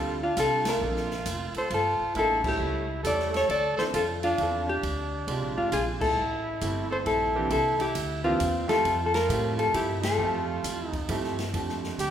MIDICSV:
0, 0, Header, 1, 7, 480
1, 0, Start_track
1, 0, Key_signature, -1, "major"
1, 0, Tempo, 446761
1, 877, Time_signature, 3, 2, 24, 8
1, 13005, End_track
2, 0, Start_track
2, 0, Title_t, "Hollow-body jazz guitar"
2, 0, Program_c, 0, 26
2, 0, Note_on_c, 0, 69, 82
2, 251, Note_on_c, 0, 65, 83
2, 362, Note_off_c, 0, 69, 0
2, 413, Note_off_c, 0, 65, 0
2, 427, Note_on_c, 0, 69, 85
2, 733, Note_off_c, 0, 69, 0
2, 740, Note_on_c, 0, 70, 90
2, 1641, Note_off_c, 0, 70, 0
2, 1699, Note_on_c, 0, 72, 79
2, 1856, Note_off_c, 0, 72, 0
2, 1873, Note_on_c, 0, 69, 81
2, 2339, Note_off_c, 0, 69, 0
2, 2351, Note_on_c, 0, 69, 96
2, 2654, Note_off_c, 0, 69, 0
2, 2669, Note_on_c, 0, 67, 89
2, 3298, Note_on_c, 0, 74, 91
2, 3315, Note_off_c, 0, 67, 0
2, 3607, Note_off_c, 0, 74, 0
2, 3616, Note_on_c, 0, 73, 97
2, 3759, Note_off_c, 0, 73, 0
2, 3770, Note_on_c, 0, 74, 93
2, 4053, Note_off_c, 0, 74, 0
2, 4069, Note_on_c, 0, 72, 95
2, 4123, Note_off_c, 0, 72, 0
2, 4254, Note_on_c, 0, 69, 91
2, 4335, Note_off_c, 0, 69, 0
2, 4553, Note_on_c, 0, 65, 88
2, 5038, Note_off_c, 0, 65, 0
2, 5043, Note_on_c, 0, 67, 91
2, 5950, Note_off_c, 0, 67, 0
2, 5991, Note_on_c, 0, 65, 77
2, 6144, Note_off_c, 0, 65, 0
2, 6160, Note_on_c, 0, 68, 87
2, 6243, Note_off_c, 0, 68, 0
2, 6462, Note_on_c, 0, 69, 94
2, 7434, Note_off_c, 0, 69, 0
2, 7439, Note_on_c, 0, 72, 84
2, 7492, Note_off_c, 0, 72, 0
2, 7594, Note_on_c, 0, 69, 83
2, 8067, Note_off_c, 0, 69, 0
2, 8080, Note_on_c, 0, 69, 84
2, 8366, Note_off_c, 0, 69, 0
2, 8394, Note_on_c, 0, 67, 89
2, 8835, Note_off_c, 0, 67, 0
2, 8856, Note_on_c, 0, 65, 79
2, 9306, Note_off_c, 0, 65, 0
2, 9339, Note_on_c, 0, 69, 96
2, 9725, Note_off_c, 0, 69, 0
2, 9737, Note_on_c, 0, 69, 69
2, 9826, Note_off_c, 0, 69, 0
2, 9830, Note_on_c, 0, 70, 98
2, 10274, Note_off_c, 0, 70, 0
2, 10305, Note_on_c, 0, 69, 75
2, 10461, Note_off_c, 0, 69, 0
2, 10479, Note_on_c, 0, 67, 82
2, 10766, Note_off_c, 0, 67, 0
2, 10791, Note_on_c, 0, 69, 83
2, 11737, Note_off_c, 0, 69, 0
2, 11737, Note_on_c, 0, 67, 83
2, 12186, Note_off_c, 0, 67, 0
2, 13005, End_track
3, 0, Start_track
3, 0, Title_t, "Trumpet"
3, 0, Program_c, 1, 56
3, 0, Note_on_c, 1, 65, 74
3, 187, Note_off_c, 1, 65, 0
3, 249, Note_on_c, 1, 62, 68
3, 396, Note_off_c, 1, 62, 0
3, 413, Note_on_c, 1, 65, 75
3, 695, Note_off_c, 1, 65, 0
3, 729, Note_on_c, 1, 65, 78
3, 1635, Note_off_c, 1, 65, 0
3, 1678, Note_on_c, 1, 69, 74
3, 1830, Note_off_c, 1, 69, 0
3, 1834, Note_on_c, 1, 65, 80
3, 2281, Note_off_c, 1, 65, 0
3, 2321, Note_on_c, 1, 64, 83
3, 2609, Note_off_c, 1, 64, 0
3, 2616, Note_on_c, 1, 64, 77
3, 3226, Note_off_c, 1, 64, 0
3, 3257, Note_on_c, 1, 69, 85
3, 3556, Note_off_c, 1, 69, 0
3, 3565, Note_on_c, 1, 69, 81
3, 3731, Note_off_c, 1, 69, 0
3, 3736, Note_on_c, 1, 69, 93
3, 4035, Note_off_c, 1, 69, 0
3, 4049, Note_on_c, 1, 69, 77
3, 4128, Note_off_c, 1, 69, 0
3, 4230, Note_on_c, 1, 65, 75
3, 4372, Note_off_c, 1, 65, 0
3, 4551, Note_on_c, 1, 62, 77
3, 4995, Note_off_c, 1, 62, 0
3, 5006, Note_on_c, 1, 62, 80
3, 5932, Note_off_c, 1, 62, 0
3, 5975, Note_on_c, 1, 62, 68
3, 6136, Note_off_c, 1, 62, 0
3, 6143, Note_on_c, 1, 65, 75
3, 6286, Note_off_c, 1, 65, 0
3, 6453, Note_on_c, 1, 64, 74
3, 7375, Note_off_c, 1, 64, 0
3, 7417, Note_on_c, 1, 69, 76
3, 7494, Note_off_c, 1, 69, 0
3, 7580, Note_on_c, 1, 64, 75
3, 8032, Note_off_c, 1, 64, 0
3, 8057, Note_on_c, 1, 64, 85
3, 8350, Note_off_c, 1, 64, 0
3, 8356, Note_on_c, 1, 64, 77
3, 8815, Note_off_c, 1, 64, 0
3, 8854, Note_on_c, 1, 60, 77
3, 9305, Note_off_c, 1, 60, 0
3, 9331, Note_on_c, 1, 65, 79
3, 9692, Note_off_c, 1, 65, 0
3, 9710, Note_on_c, 1, 65, 55
3, 9796, Note_off_c, 1, 65, 0
3, 9802, Note_on_c, 1, 65, 84
3, 10258, Note_off_c, 1, 65, 0
3, 10271, Note_on_c, 1, 65, 72
3, 10442, Note_off_c, 1, 65, 0
3, 10460, Note_on_c, 1, 64, 76
3, 10746, Note_off_c, 1, 64, 0
3, 10753, Note_on_c, 1, 65, 75
3, 11709, Note_off_c, 1, 65, 0
3, 11709, Note_on_c, 1, 63, 75
3, 12167, Note_off_c, 1, 63, 0
3, 12889, Note_on_c, 1, 67, 70
3, 13005, Note_off_c, 1, 67, 0
3, 13005, End_track
4, 0, Start_track
4, 0, Title_t, "Grand piano"
4, 0, Program_c, 2, 0
4, 0, Note_on_c, 2, 55, 72
4, 0, Note_on_c, 2, 60, 61
4, 0, Note_on_c, 2, 62, 59
4, 0, Note_on_c, 2, 65, 62
4, 0, Note_on_c, 2, 69, 80
4, 194, Note_off_c, 2, 55, 0
4, 196, Note_off_c, 2, 60, 0
4, 196, Note_off_c, 2, 62, 0
4, 198, Note_off_c, 2, 65, 0
4, 200, Note_off_c, 2, 69, 0
4, 393, Note_on_c, 2, 55, 59
4, 397, Note_on_c, 2, 60, 58
4, 401, Note_on_c, 2, 62, 57
4, 405, Note_on_c, 2, 65, 58
4, 408, Note_on_c, 2, 69, 75
4, 676, Note_off_c, 2, 55, 0
4, 677, Note_off_c, 2, 60, 0
4, 680, Note_off_c, 2, 62, 0
4, 682, Note_off_c, 2, 65, 0
4, 683, Note_off_c, 2, 69, 0
4, 868, Note_on_c, 2, 58, 58
4, 877, Note_on_c, 2, 60, 54
4, 878, Note_on_c, 2, 62, 56
4, 878, Note_on_c, 2, 65, 54
4, 882, Note_on_c, 2, 69, 68
4, 1153, Note_off_c, 2, 58, 0
4, 1157, Note_off_c, 2, 60, 0
4, 1158, Note_off_c, 2, 62, 0
4, 1158, Note_off_c, 2, 65, 0
4, 1160, Note_off_c, 2, 69, 0
4, 2311, Note_on_c, 2, 56, 61
4, 2313, Note_on_c, 2, 58, 53
4, 2319, Note_on_c, 2, 62, 55
4, 2320, Note_on_c, 2, 65, 51
4, 2324, Note_on_c, 2, 70, 65
4, 2594, Note_off_c, 2, 56, 0
4, 2595, Note_off_c, 2, 58, 0
4, 2598, Note_off_c, 2, 62, 0
4, 2599, Note_off_c, 2, 65, 0
4, 2600, Note_off_c, 2, 70, 0
4, 2626, Note_on_c, 2, 55, 57
4, 2627, Note_on_c, 2, 61, 53
4, 2629, Note_on_c, 2, 57, 55
4, 2634, Note_on_c, 2, 64, 51
4, 2640, Note_on_c, 2, 69, 64
4, 3044, Note_off_c, 2, 55, 0
4, 3045, Note_off_c, 2, 61, 0
4, 3046, Note_off_c, 2, 57, 0
4, 3048, Note_off_c, 2, 64, 0
4, 3051, Note_off_c, 2, 69, 0
4, 3267, Note_on_c, 2, 55, 66
4, 3272, Note_on_c, 2, 57, 59
4, 3275, Note_on_c, 2, 64, 55
4, 3276, Note_on_c, 2, 61, 60
4, 3282, Note_on_c, 2, 69, 69
4, 3751, Note_off_c, 2, 55, 0
4, 3753, Note_off_c, 2, 57, 0
4, 3755, Note_off_c, 2, 61, 0
4, 3755, Note_off_c, 2, 64, 0
4, 3758, Note_off_c, 2, 69, 0
4, 4069, Note_on_c, 2, 53, 65
4, 4070, Note_on_c, 2, 60, 52
4, 4072, Note_on_c, 2, 62, 57
4, 4074, Note_on_c, 2, 64, 55
4, 4077, Note_on_c, 2, 69, 62
4, 4219, Note_off_c, 2, 53, 0
4, 4219, Note_off_c, 2, 60, 0
4, 4220, Note_off_c, 2, 62, 0
4, 4222, Note_off_c, 2, 64, 0
4, 4223, Note_off_c, 2, 69, 0
4, 4719, Note_on_c, 2, 53, 61
4, 4721, Note_on_c, 2, 60, 55
4, 4728, Note_on_c, 2, 62, 53
4, 4731, Note_on_c, 2, 64, 52
4, 4733, Note_on_c, 2, 69, 67
4, 4997, Note_off_c, 2, 53, 0
4, 4998, Note_off_c, 2, 60, 0
4, 5001, Note_off_c, 2, 62, 0
4, 5003, Note_off_c, 2, 64, 0
4, 5004, Note_off_c, 2, 69, 0
4, 5667, Note_on_c, 2, 56, 59
4, 5673, Note_on_c, 2, 60, 52
4, 5676, Note_on_c, 2, 62, 54
4, 5681, Note_on_c, 2, 65, 56
4, 5683, Note_on_c, 2, 67, 63
4, 6399, Note_off_c, 2, 56, 0
4, 6402, Note_off_c, 2, 60, 0
4, 6404, Note_off_c, 2, 62, 0
4, 6406, Note_off_c, 2, 65, 0
4, 6407, Note_off_c, 2, 67, 0
4, 7107, Note_on_c, 2, 55, 62
4, 7111, Note_on_c, 2, 57, 54
4, 7112, Note_on_c, 2, 60, 54
4, 7112, Note_on_c, 2, 64, 56
4, 7118, Note_on_c, 2, 67, 69
4, 7838, Note_off_c, 2, 55, 0
4, 7840, Note_off_c, 2, 57, 0
4, 7841, Note_off_c, 2, 60, 0
4, 7841, Note_off_c, 2, 64, 0
4, 7844, Note_off_c, 2, 67, 0
4, 7901, Note_on_c, 2, 52, 77
4, 7902, Note_on_c, 2, 58, 70
4, 7907, Note_on_c, 2, 60, 74
4, 7910, Note_on_c, 2, 62, 75
4, 7911, Note_on_c, 2, 67, 92
4, 8053, Note_off_c, 2, 52, 0
4, 8054, Note_off_c, 2, 58, 0
4, 8056, Note_off_c, 2, 60, 0
4, 8058, Note_off_c, 2, 62, 0
4, 8058, Note_off_c, 2, 67, 0
4, 8855, Note_on_c, 2, 52, 77
4, 8857, Note_on_c, 2, 58, 72
4, 8861, Note_on_c, 2, 60, 63
4, 8864, Note_on_c, 2, 67, 81
4, 8866, Note_on_c, 2, 62, 68
4, 9010, Note_off_c, 2, 52, 0
4, 9012, Note_off_c, 2, 58, 0
4, 9013, Note_off_c, 2, 60, 0
4, 9015, Note_off_c, 2, 67, 0
4, 9016, Note_off_c, 2, 62, 0
4, 9324, Note_on_c, 2, 53, 77
4, 9326, Note_on_c, 2, 57, 74
4, 9330, Note_on_c, 2, 64, 73
4, 9331, Note_on_c, 2, 60, 69
4, 9342, Note_on_c, 2, 67, 88
4, 9485, Note_off_c, 2, 53, 0
4, 9486, Note_off_c, 2, 57, 0
4, 9488, Note_off_c, 2, 60, 0
4, 9488, Note_off_c, 2, 64, 0
4, 9494, Note_off_c, 2, 67, 0
4, 9983, Note_on_c, 2, 53, 65
4, 9983, Note_on_c, 2, 57, 57
4, 9992, Note_on_c, 2, 60, 61
4, 9992, Note_on_c, 2, 64, 61
4, 9994, Note_on_c, 2, 67, 72
4, 10717, Note_off_c, 2, 53, 0
4, 10717, Note_off_c, 2, 57, 0
4, 10721, Note_off_c, 2, 64, 0
4, 10722, Note_off_c, 2, 60, 0
4, 10722, Note_off_c, 2, 67, 0
4, 10940, Note_on_c, 2, 53, 73
4, 10944, Note_on_c, 2, 57, 69
4, 10949, Note_on_c, 2, 60, 70
4, 10954, Note_on_c, 2, 76, 67
4, 10955, Note_on_c, 2, 67, 77
4, 11676, Note_off_c, 2, 53, 0
4, 11678, Note_off_c, 2, 57, 0
4, 11681, Note_off_c, 2, 60, 0
4, 11683, Note_off_c, 2, 76, 0
4, 11684, Note_off_c, 2, 67, 0
4, 11911, Note_on_c, 2, 53, 74
4, 11916, Note_on_c, 2, 57, 70
4, 11917, Note_on_c, 2, 60, 65
4, 11921, Note_on_c, 2, 67, 80
4, 11922, Note_on_c, 2, 64, 67
4, 12193, Note_off_c, 2, 53, 0
4, 12196, Note_off_c, 2, 57, 0
4, 12196, Note_off_c, 2, 60, 0
4, 12198, Note_off_c, 2, 67, 0
4, 12199, Note_off_c, 2, 64, 0
4, 12387, Note_on_c, 2, 53, 62
4, 12391, Note_on_c, 2, 57, 51
4, 12396, Note_on_c, 2, 62, 49
4, 12397, Note_on_c, 2, 60, 55
4, 12407, Note_on_c, 2, 67, 63
4, 13005, Note_off_c, 2, 53, 0
4, 13005, Note_off_c, 2, 57, 0
4, 13005, Note_off_c, 2, 60, 0
4, 13005, Note_off_c, 2, 62, 0
4, 13005, Note_off_c, 2, 67, 0
4, 13005, End_track
5, 0, Start_track
5, 0, Title_t, "Upright bass"
5, 0, Program_c, 3, 32
5, 0, Note_on_c, 3, 38, 87
5, 382, Note_off_c, 3, 38, 0
5, 394, Note_on_c, 3, 36, 88
5, 861, Note_off_c, 3, 36, 0
5, 874, Note_on_c, 3, 34, 86
5, 1341, Note_off_c, 3, 34, 0
5, 1352, Note_on_c, 3, 29, 84
5, 1644, Note_off_c, 3, 29, 0
5, 1829, Note_on_c, 3, 31, 85
5, 2123, Note_off_c, 3, 31, 0
5, 2314, Note_on_c, 3, 33, 85
5, 2781, Note_off_c, 3, 33, 0
5, 2794, Note_on_c, 3, 37, 88
5, 3260, Note_off_c, 3, 37, 0
5, 3268, Note_on_c, 3, 40, 86
5, 3737, Note_off_c, 3, 40, 0
5, 3752, Note_on_c, 3, 38, 78
5, 4043, Note_off_c, 3, 38, 0
5, 4229, Note_on_c, 3, 41, 91
5, 4697, Note_off_c, 3, 41, 0
5, 4708, Note_on_c, 3, 40, 92
5, 5176, Note_off_c, 3, 40, 0
5, 5189, Note_on_c, 3, 38, 82
5, 5657, Note_off_c, 3, 38, 0
5, 5667, Note_on_c, 3, 36, 84
5, 5821, Note_off_c, 3, 36, 0
5, 5821, Note_on_c, 3, 34, 64
5, 5983, Note_off_c, 3, 34, 0
5, 5989, Note_on_c, 3, 32, 65
5, 6140, Note_off_c, 3, 32, 0
5, 6149, Note_on_c, 3, 34, 93
5, 6616, Note_off_c, 3, 34, 0
5, 6629, Note_on_c, 3, 33, 81
5, 7096, Note_off_c, 3, 33, 0
5, 7108, Note_on_c, 3, 31, 86
5, 7575, Note_off_c, 3, 31, 0
5, 7587, Note_on_c, 3, 34, 83
5, 8054, Note_off_c, 3, 34, 0
5, 8063, Note_on_c, 3, 36, 86
5, 8532, Note_off_c, 3, 36, 0
5, 8545, Note_on_c, 3, 38, 87
5, 9013, Note_off_c, 3, 38, 0
5, 9027, Note_on_c, 3, 40, 87
5, 9495, Note_off_c, 3, 40, 0
5, 9507, Note_on_c, 3, 41, 93
5, 9975, Note_off_c, 3, 41, 0
5, 9984, Note_on_c, 3, 45, 95
5, 10453, Note_off_c, 3, 45, 0
5, 10463, Note_on_c, 3, 43, 90
5, 10933, Note_off_c, 3, 43, 0
5, 10940, Note_on_c, 3, 41, 91
5, 11412, Note_off_c, 3, 41, 0
5, 11427, Note_on_c, 3, 40, 90
5, 11896, Note_off_c, 3, 40, 0
5, 11912, Note_on_c, 3, 43, 89
5, 12379, Note_off_c, 3, 43, 0
5, 12394, Note_on_c, 3, 41, 81
5, 12860, Note_off_c, 3, 41, 0
5, 12877, Note_on_c, 3, 38, 91
5, 13005, Note_off_c, 3, 38, 0
5, 13005, End_track
6, 0, Start_track
6, 0, Title_t, "Muted upright bass strokes"
6, 1666, Note_on_c, 9, 29, 38
6, 1774, Note_off_c, 9, 29, 0
6, 2145, Note_on_c, 9, 29, 39
6, 2252, Note_off_c, 9, 29, 0
6, 4061, Note_on_c, 9, 29, 43
6, 4168, Note_off_c, 9, 29, 0
6, 13005, End_track
7, 0, Start_track
7, 0, Title_t, "Drums"
7, 394, Note_on_c, 9, 36, 22
7, 394, Note_on_c, 9, 38, 35
7, 394, Note_on_c, 9, 44, 54
7, 394, Note_on_c, 9, 51, 72
7, 501, Note_off_c, 9, 38, 0
7, 501, Note_off_c, 9, 44, 0
7, 501, Note_off_c, 9, 51, 0
7, 502, Note_off_c, 9, 36, 0
7, 700, Note_on_c, 9, 38, 80
7, 700, Note_on_c, 9, 51, 68
7, 807, Note_off_c, 9, 38, 0
7, 807, Note_off_c, 9, 51, 0
7, 1035, Note_on_c, 9, 38, 27
7, 1142, Note_off_c, 9, 38, 0
7, 1188, Note_on_c, 9, 38, 38
7, 1296, Note_off_c, 9, 38, 0
7, 1349, Note_on_c, 9, 44, 60
7, 1349, Note_on_c, 9, 51, 70
7, 1351, Note_on_c, 9, 36, 17
7, 1457, Note_off_c, 9, 44, 0
7, 1457, Note_off_c, 9, 51, 0
7, 1459, Note_off_c, 9, 36, 0
7, 1660, Note_on_c, 9, 51, 47
7, 1767, Note_off_c, 9, 51, 0
7, 1832, Note_on_c, 9, 36, 18
7, 1832, Note_on_c, 9, 51, 56
7, 1939, Note_off_c, 9, 51, 0
7, 1940, Note_off_c, 9, 36, 0
7, 2310, Note_on_c, 9, 51, 52
7, 2311, Note_on_c, 9, 36, 22
7, 2417, Note_off_c, 9, 51, 0
7, 2419, Note_off_c, 9, 36, 0
7, 2623, Note_on_c, 9, 36, 76
7, 2623, Note_on_c, 9, 49, 71
7, 2730, Note_off_c, 9, 36, 0
7, 2730, Note_off_c, 9, 49, 0
7, 3270, Note_on_c, 9, 36, 23
7, 3272, Note_on_c, 9, 44, 53
7, 3272, Note_on_c, 9, 51, 65
7, 3378, Note_off_c, 9, 36, 0
7, 3379, Note_off_c, 9, 44, 0
7, 3379, Note_off_c, 9, 51, 0
7, 3431, Note_on_c, 9, 38, 27
7, 3539, Note_off_c, 9, 38, 0
7, 3589, Note_on_c, 9, 51, 45
7, 3595, Note_on_c, 9, 38, 45
7, 3697, Note_off_c, 9, 51, 0
7, 3702, Note_off_c, 9, 38, 0
7, 3751, Note_on_c, 9, 36, 25
7, 3756, Note_on_c, 9, 51, 58
7, 3859, Note_off_c, 9, 36, 0
7, 3863, Note_off_c, 9, 51, 0
7, 4062, Note_on_c, 9, 38, 52
7, 4169, Note_off_c, 9, 38, 0
7, 4229, Note_on_c, 9, 36, 28
7, 4231, Note_on_c, 9, 44, 57
7, 4231, Note_on_c, 9, 51, 66
7, 4336, Note_off_c, 9, 36, 0
7, 4339, Note_off_c, 9, 44, 0
7, 4339, Note_off_c, 9, 51, 0
7, 4544, Note_on_c, 9, 51, 46
7, 4652, Note_off_c, 9, 51, 0
7, 4708, Note_on_c, 9, 51, 53
7, 4709, Note_on_c, 9, 36, 21
7, 4815, Note_off_c, 9, 51, 0
7, 4816, Note_off_c, 9, 36, 0
7, 5188, Note_on_c, 9, 36, 22
7, 5192, Note_on_c, 9, 51, 57
7, 5296, Note_off_c, 9, 36, 0
7, 5300, Note_off_c, 9, 51, 0
7, 5667, Note_on_c, 9, 36, 26
7, 5670, Note_on_c, 9, 51, 63
7, 5775, Note_off_c, 9, 36, 0
7, 5777, Note_off_c, 9, 51, 0
7, 6145, Note_on_c, 9, 44, 54
7, 6145, Note_on_c, 9, 51, 62
7, 6147, Note_on_c, 9, 36, 20
7, 6252, Note_off_c, 9, 44, 0
7, 6252, Note_off_c, 9, 51, 0
7, 6254, Note_off_c, 9, 36, 0
7, 6459, Note_on_c, 9, 49, 80
7, 6460, Note_on_c, 9, 36, 89
7, 6567, Note_off_c, 9, 36, 0
7, 6567, Note_off_c, 9, 49, 0
7, 7105, Note_on_c, 9, 44, 60
7, 7105, Note_on_c, 9, 51, 64
7, 7107, Note_on_c, 9, 36, 25
7, 7213, Note_off_c, 9, 44, 0
7, 7213, Note_off_c, 9, 51, 0
7, 7214, Note_off_c, 9, 36, 0
7, 7584, Note_on_c, 9, 51, 56
7, 7586, Note_on_c, 9, 36, 24
7, 7692, Note_off_c, 9, 51, 0
7, 7694, Note_off_c, 9, 36, 0
7, 8063, Note_on_c, 9, 51, 58
7, 8064, Note_on_c, 9, 36, 23
7, 8170, Note_off_c, 9, 51, 0
7, 8172, Note_off_c, 9, 36, 0
7, 8378, Note_on_c, 9, 51, 46
7, 8485, Note_off_c, 9, 51, 0
7, 8541, Note_on_c, 9, 44, 55
7, 8541, Note_on_c, 9, 51, 75
7, 8544, Note_on_c, 9, 36, 23
7, 8649, Note_off_c, 9, 44, 0
7, 8649, Note_off_c, 9, 51, 0
7, 8651, Note_off_c, 9, 36, 0
7, 9023, Note_on_c, 9, 36, 20
7, 9024, Note_on_c, 9, 44, 55
7, 9024, Note_on_c, 9, 51, 75
7, 9131, Note_off_c, 9, 36, 0
7, 9131, Note_off_c, 9, 44, 0
7, 9131, Note_off_c, 9, 51, 0
7, 9338, Note_on_c, 9, 38, 48
7, 9338, Note_on_c, 9, 51, 49
7, 9445, Note_off_c, 9, 38, 0
7, 9445, Note_off_c, 9, 51, 0
7, 9504, Note_on_c, 9, 36, 26
7, 9509, Note_on_c, 9, 51, 61
7, 9611, Note_off_c, 9, 36, 0
7, 9617, Note_off_c, 9, 51, 0
7, 9821, Note_on_c, 9, 38, 57
7, 9821, Note_on_c, 9, 51, 49
7, 9929, Note_off_c, 9, 38, 0
7, 9929, Note_off_c, 9, 51, 0
7, 9986, Note_on_c, 9, 36, 18
7, 9991, Note_on_c, 9, 44, 58
7, 9991, Note_on_c, 9, 51, 77
7, 10093, Note_off_c, 9, 36, 0
7, 10099, Note_off_c, 9, 44, 0
7, 10099, Note_off_c, 9, 51, 0
7, 10302, Note_on_c, 9, 51, 49
7, 10409, Note_off_c, 9, 51, 0
7, 10465, Note_on_c, 9, 36, 25
7, 10467, Note_on_c, 9, 51, 66
7, 10573, Note_off_c, 9, 36, 0
7, 10575, Note_off_c, 9, 51, 0
7, 10779, Note_on_c, 9, 38, 82
7, 10779, Note_on_c, 9, 51, 73
7, 10887, Note_off_c, 9, 38, 0
7, 10887, Note_off_c, 9, 51, 0
7, 11430, Note_on_c, 9, 36, 20
7, 11434, Note_on_c, 9, 44, 60
7, 11434, Note_on_c, 9, 51, 73
7, 11537, Note_off_c, 9, 36, 0
7, 11542, Note_off_c, 9, 44, 0
7, 11542, Note_off_c, 9, 51, 0
7, 11743, Note_on_c, 9, 36, 58
7, 11747, Note_on_c, 9, 51, 50
7, 11850, Note_off_c, 9, 36, 0
7, 11854, Note_off_c, 9, 51, 0
7, 11911, Note_on_c, 9, 36, 22
7, 11911, Note_on_c, 9, 51, 72
7, 12019, Note_off_c, 9, 36, 0
7, 12019, Note_off_c, 9, 51, 0
7, 12077, Note_on_c, 9, 38, 26
7, 12184, Note_off_c, 9, 38, 0
7, 12233, Note_on_c, 9, 51, 49
7, 12237, Note_on_c, 9, 38, 51
7, 12341, Note_off_c, 9, 51, 0
7, 12345, Note_off_c, 9, 38, 0
7, 12394, Note_on_c, 9, 36, 18
7, 12397, Note_on_c, 9, 51, 58
7, 12501, Note_off_c, 9, 36, 0
7, 12504, Note_off_c, 9, 51, 0
7, 12559, Note_on_c, 9, 38, 29
7, 12667, Note_off_c, 9, 38, 0
7, 12718, Note_on_c, 9, 38, 40
7, 12825, Note_off_c, 9, 38, 0
7, 12876, Note_on_c, 9, 36, 19
7, 12883, Note_on_c, 9, 44, 57
7, 12883, Note_on_c, 9, 51, 63
7, 12983, Note_off_c, 9, 36, 0
7, 12991, Note_off_c, 9, 44, 0
7, 12991, Note_off_c, 9, 51, 0
7, 13005, End_track
0, 0, End_of_file